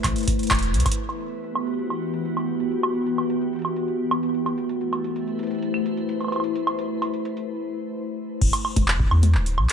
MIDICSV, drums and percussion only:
0, 0, Header, 1, 2, 480
1, 0, Start_track
1, 0, Key_signature, 1, "minor"
1, 0, Tempo, 465116
1, 1004, Time_signature, 4, 2, 24, 8
1, 10040, End_track
2, 0, Start_track
2, 0, Title_t, "Drums"
2, 44, Note_on_c, 9, 36, 112
2, 44, Note_on_c, 9, 39, 58
2, 44, Note_on_c, 9, 42, 79
2, 44, Note_on_c, 9, 76, 53
2, 148, Note_off_c, 9, 36, 0
2, 148, Note_off_c, 9, 39, 0
2, 148, Note_off_c, 9, 42, 0
2, 148, Note_off_c, 9, 76, 0
2, 165, Note_on_c, 9, 42, 35
2, 189, Note_off_c, 9, 42, 0
2, 189, Note_on_c, 9, 42, 29
2, 213, Note_off_c, 9, 42, 0
2, 213, Note_on_c, 9, 42, 23
2, 237, Note_off_c, 9, 42, 0
2, 237, Note_on_c, 9, 42, 19
2, 260, Note_off_c, 9, 42, 0
2, 260, Note_on_c, 9, 42, 15
2, 284, Note_off_c, 9, 42, 0
2, 284, Note_on_c, 9, 36, 101
2, 284, Note_on_c, 9, 42, 85
2, 388, Note_off_c, 9, 36, 0
2, 388, Note_off_c, 9, 42, 0
2, 405, Note_on_c, 9, 42, 25
2, 445, Note_off_c, 9, 42, 0
2, 445, Note_on_c, 9, 42, 30
2, 485, Note_off_c, 9, 42, 0
2, 485, Note_on_c, 9, 42, 34
2, 524, Note_on_c, 9, 36, 117
2, 525, Note_off_c, 9, 42, 0
2, 525, Note_on_c, 9, 39, 112
2, 525, Note_on_c, 9, 42, 77
2, 525, Note_on_c, 9, 76, 81
2, 565, Note_off_c, 9, 42, 0
2, 565, Note_on_c, 9, 42, 42
2, 605, Note_off_c, 9, 42, 0
2, 605, Note_on_c, 9, 42, 44
2, 628, Note_off_c, 9, 36, 0
2, 628, Note_off_c, 9, 39, 0
2, 628, Note_off_c, 9, 76, 0
2, 645, Note_off_c, 9, 42, 0
2, 645, Note_on_c, 9, 42, 36
2, 748, Note_off_c, 9, 42, 0
2, 765, Note_on_c, 9, 42, 55
2, 825, Note_off_c, 9, 42, 0
2, 825, Note_on_c, 9, 42, 65
2, 884, Note_on_c, 9, 36, 103
2, 885, Note_off_c, 9, 42, 0
2, 885, Note_on_c, 9, 42, 78
2, 885, Note_on_c, 9, 76, 56
2, 945, Note_off_c, 9, 42, 0
2, 945, Note_on_c, 9, 42, 84
2, 988, Note_off_c, 9, 36, 0
2, 988, Note_off_c, 9, 76, 0
2, 1005, Note_off_c, 9, 42, 0
2, 1005, Note_on_c, 9, 42, 76
2, 1108, Note_off_c, 9, 42, 0
2, 1125, Note_on_c, 9, 42, 35
2, 1125, Note_on_c, 9, 76, 51
2, 1228, Note_off_c, 9, 42, 0
2, 1228, Note_off_c, 9, 76, 0
2, 1244, Note_on_c, 9, 42, 77
2, 1348, Note_off_c, 9, 42, 0
2, 1364, Note_on_c, 9, 42, 53
2, 1468, Note_off_c, 9, 42, 0
2, 1484, Note_on_c, 9, 42, 76
2, 1588, Note_off_c, 9, 42, 0
2, 1604, Note_on_c, 9, 42, 36
2, 1604, Note_on_c, 9, 76, 75
2, 1708, Note_off_c, 9, 42, 0
2, 1708, Note_off_c, 9, 76, 0
2, 1724, Note_on_c, 9, 42, 76
2, 1827, Note_off_c, 9, 42, 0
2, 1844, Note_on_c, 9, 42, 53
2, 1948, Note_off_c, 9, 42, 0
2, 1964, Note_on_c, 9, 42, 77
2, 1964, Note_on_c, 9, 76, 48
2, 2068, Note_off_c, 9, 42, 0
2, 2068, Note_off_c, 9, 76, 0
2, 2084, Note_on_c, 9, 42, 35
2, 2187, Note_off_c, 9, 42, 0
2, 2204, Note_on_c, 9, 42, 81
2, 2307, Note_off_c, 9, 42, 0
2, 2324, Note_on_c, 9, 42, 53
2, 2427, Note_off_c, 9, 42, 0
2, 2444, Note_on_c, 9, 42, 78
2, 2444, Note_on_c, 9, 76, 50
2, 2547, Note_off_c, 9, 42, 0
2, 2547, Note_off_c, 9, 76, 0
2, 2684, Note_on_c, 9, 42, 76
2, 2788, Note_off_c, 9, 42, 0
2, 2804, Note_on_c, 9, 42, 52
2, 2908, Note_off_c, 9, 42, 0
2, 2924, Note_on_c, 9, 42, 78
2, 2924, Note_on_c, 9, 76, 76
2, 3027, Note_off_c, 9, 42, 0
2, 3027, Note_off_c, 9, 76, 0
2, 3044, Note_on_c, 9, 42, 36
2, 3147, Note_off_c, 9, 42, 0
2, 3164, Note_on_c, 9, 42, 77
2, 3268, Note_off_c, 9, 42, 0
2, 3284, Note_on_c, 9, 42, 52
2, 3284, Note_on_c, 9, 76, 51
2, 3388, Note_off_c, 9, 42, 0
2, 3388, Note_off_c, 9, 76, 0
2, 3404, Note_on_c, 9, 42, 79
2, 3507, Note_off_c, 9, 42, 0
2, 3524, Note_on_c, 9, 42, 38
2, 3627, Note_off_c, 9, 42, 0
2, 3644, Note_on_c, 9, 42, 35
2, 3674, Note_off_c, 9, 42, 0
2, 3674, Note_on_c, 9, 42, 44
2, 3704, Note_off_c, 9, 42, 0
2, 3704, Note_on_c, 9, 42, 54
2, 3734, Note_off_c, 9, 42, 0
2, 3734, Note_on_c, 9, 42, 65
2, 3764, Note_off_c, 9, 42, 0
2, 3764, Note_on_c, 9, 42, 52
2, 3764, Note_on_c, 9, 76, 49
2, 3868, Note_off_c, 9, 42, 0
2, 3868, Note_off_c, 9, 76, 0
2, 3884, Note_on_c, 9, 42, 77
2, 3987, Note_off_c, 9, 42, 0
2, 4004, Note_on_c, 9, 42, 37
2, 4107, Note_off_c, 9, 42, 0
2, 4244, Note_on_c, 9, 42, 52
2, 4244, Note_on_c, 9, 76, 79
2, 4348, Note_off_c, 9, 42, 0
2, 4348, Note_off_c, 9, 76, 0
2, 4364, Note_on_c, 9, 42, 77
2, 4467, Note_off_c, 9, 42, 0
2, 4484, Note_on_c, 9, 42, 37
2, 4588, Note_off_c, 9, 42, 0
2, 4604, Note_on_c, 9, 42, 80
2, 4604, Note_on_c, 9, 76, 50
2, 4707, Note_off_c, 9, 42, 0
2, 4707, Note_off_c, 9, 76, 0
2, 4724, Note_on_c, 9, 42, 52
2, 4828, Note_off_c, 9, 42, 0
2, 4845, Note_on_c, 9, 42, 79
2, 4948, Note_off_c, 9, 42, 0
2, 4965, Note_on_c, 9, 42, 36
2, 5068, Note_off_c, 9, 42, 0
2, 5085, Note_on_c, 9, 42, 75
2, 5085, Note_on_c, 9, 76, 49
2, 5188, Note_off_c, 9, 42, 0
2, 5188, Note_off_c, 9, 76, 0
2, 5205, Note_on_c, 9, 42, 53
2, 5308, Note_off_c, 9, 42, 0
2, 5324, Note_on_c, 9, 42, 77
2, 5427, Note_off_c, 9, 42, 0
2, 5444, Note_on_c, 9, 42, 36
2, 5548, Note_off_c, 9, 42, 0
2, 5564, Note_on_c, 9, 42, 73
2, 5604, Note_off_c, 9, 42, 0
2, 5604, Note_on_c, 9, 42, 59
2, 5644, Note_off_c, 9, 42, 0
2, 5644, Note_on_c, 9, 42, 47
2, 5684, Note_off_c, 9, 42, 0
2, 5684, Note_on_c, 9, 42, 51
2, 5724, Note_off_c, 9, 42, 0
2, 5724, Note_on_c, 9, 42, 32
2, 5764, Note_off_c, 9, 42, 0
2, 5764, Note_on_c, 9, 42, 27
2, 5804, Note_off_c, 9, 42, 0
2, 5804, Note_on_c, 9, 42, 74
2, 5907, Note_off_c, 9, 42, 0
2, 5924, Note_on_c, 9, 42, 35
2, 5924, Note_on_c, 9, 76, 49
2, 6028, Note_off_c, 9, 42, 0
2, 6028, Note_off_c, 9, 76, 0
2, 6044, Note_on_c, 9, 42, 78
2, 6148, Note_off_c, 9, 42, 0
2, 6165, Note_on_c, 9, 42, 51
2, 6268, Note_off_c, 9, 42, 0
2, 6285, Note_on_c, 9, 42, 73
2, 6388, Note_off_c, 9, 42, 0
2, 6404, Note_on_c, 9, 42, 35
2, 6404, Note_on_c, 9, 76, 22
2, 6445, Note_off_c, 9, 76, 0
2, 6445, Note_on_c, 9, 76, 26
2, 6485, Note_off_c, 9, 76, 0
2, 6485, Note_on_c, 9, 76, 29
2, 6508, Note_off_c, 9, 42, 0
2, 6525, Note_off_c, 9, 76, 0
2, 6525, Note_on_c, 9, 42, 75
2, 6525, Note_on_c, 9, 76, 33
2, 6565, Note_off_c, 9, 76, 0
2, 6565, Note_on_c, 9, 76, 37
2, 6605, Note_off_c, 9, 76, 0
2, 6605, Note_on_c, 9, 76, 41
2, 6628, Note_off_c, 9, 42, 0
2, 6645, Note_on_c, 9, 42, 51
2, 6708, Note_off_c, 9, 76, 0
2, 6748, Note_off_c, 9, 42, 0
2, 6765, Note_on_c, 9, 42, 75
2, 6868, Note_off_c, 9, 42, 0
2, 6884, Note_on_c, 9, 42, 35
2, 6884, Note_on_c, 9, 76, 71
2, 6988, Note_off_c, 9, 42, 0
2, 6988, Note_off_c, 9, 76, 0
2, 7004, Note_on_c, 9, 42, 73
2, 7107, Note_off_c, 9, 42, 0
2, 7245, Note_on_c, 9, 42, 74
2, 7245, Note_on_c, 9, 76, 46
2, 7348, Note_off_c, 9, 42, 0
2, 7348, Note_off_c, 9, 76, 0
2, 7364, Note_on_c, 9, 42, 35
2, 7468, Note_off_c, 9, 42, 0
2, 7484, Note_on_c, 9, 42, 75
2, 7587, Note_off_c, 9, 42, 0
2, 7604, Note_on_c, 9, 42, 50
2, 7708, Note_off_c, 9, 42, 0
2, 8684, Note_on_c, 9, 49, 108
2, 8685, Note_on_c, 9, 36, 120
2, 8788, Note_off_c, 9, 36, 0
2, 8788, Note_off_c, 9, 49, 0
2, 8805, Note_on_c, 9, 42, 54
2, 8805, Note_on_c, 9, 76, 66
2, 8908, Note_off_c, 9, 42, 0
2, 8908, Note_off_c, 9, 76, 0
2, 8925, Note_on_c, 9, 76, 55
2, 9028, Note_off_c, 9, 76, 0
2, 9045, Note_on_c, 9, 36, 120
2, 9045, Note_on_c, 9, 42, 69
2, 9045, Note_on_c, 9, 48, 87
2, 9148, Note_off_c, 9, 36, 0
2, 9148, Note_off_c, 9, 42, 0
2, 9148, Note_off_c, 9, 48, 0
2, 9165, Note_on_c, 9, 39, 121
2, 9268, Note_off_c, 9, 39, 0
2, 9284, Note_on_c, 9, 36, 108
2, 9388, Note_off_c, 9, 36, 0
2, 9405, Note_on_c, 9, 76, 57
2, 9508, Note_off_c, 9, 76, 0
2, 9525, Note_on_c, 9, 42, 69
2, 9525, Note_on_c, 9, 48, 91
2, 9628, Note_off_c, 9, 42, 0
2, 9628, Note_off_c, 9, 48, 0
2, 9645, Note_on_c, 9, 39, 59
2, 9748, Note_off_c, 9, 39, 0
2, 9765, Note_on_c, 9, 42, 38
2, 9868, Note_off_c, 9, 42, 0
2, 9885, Note_on_c, 9, 76, 57
2, 9988, Note_off_c, 9, 76, 0
2, 10005, Note_on_c, 9, 39, 63
2, 10005, Note_on_c, 9, 42, 73
2, 10040, Note_off_c, 9, 39, 0
2, 10040, Note_off_c, 9, 42, 0
2, 10040, End_track
0, 0, End_of_file